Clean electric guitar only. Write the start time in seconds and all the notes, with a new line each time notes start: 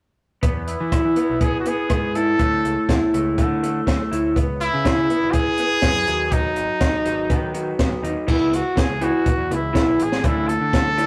0.43 B3
0.92 E4
1.17 B3
1.41 B3
1.67 B3
1.90 B3
2.15 E4
2.39 A3
2.89 E4
3.14 A3
3.39 A3
3.63 A3
3.87 A3
4.12 E4
4.36 B3
4.85 E4
5.10 B3
5.35 B3
5.60 B3
5.84 B3
6.07 F#3
6.32 F#3
6.81 D#4
7.05 F#3
7.30 B3
7.54 F#3
7.79 B3
8.03 D#4
8.27 E3 B3 E4
8.52 E3 B3
8.76 E3 B3
9.01 E3 B3 E4
9.26 E3 B3
9.51 E3 B3
9.73 E3 B3 E4
10.00 E3 B3
10.24 E3 A3 D4
10.50 E3 A3
10.74 E3 A3
10.97 E3 A3 D4